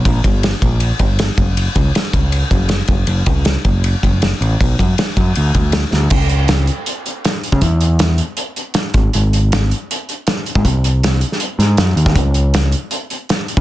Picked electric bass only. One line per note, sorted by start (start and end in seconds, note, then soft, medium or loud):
0.06 0.20 A#1 medium
0.24 0.53 G1 medium
0.63 0.91 A#1 medium
1.00 1.29 G1 medium
1.38 1.67 F#1 medium
1.76 1.90 C#2 medium
2.14 2.42 C#2 medium
2.52 2.80 F#1 medium
2.89 3.04 F#1 medium
3.07 3.22 F#1 loud
3.27 3.56 C#2 medium
3.65 3.94 F#1 medium
4.03 4.32 F#1 medium
4.41 4.55 A1 medium
4.61 4.75 B1 medium
4.79 4.94 F#2 medium
5.17 5.31 F#2 medium
5.37 5.51 D2 medium
5.54 5.83 D2 medium
5.93 6.07 D2 medium
6.11 6.69 C#2 medium
7.53 7.60 C#3 medium
7.62 8.20 E2 loud
8.94 9.09 G#1 medium
9.15 9.72 G#1 loud
10.56 10.63 G#2 medium
10.65 11.23 C2 medium
11.59 11.76 G#2 medium
11.78 11.95 F#2 medium
11.96 12.13 D#2 medium
12.16 12.73 C#2 loud
13.58 13.61 C#3 medium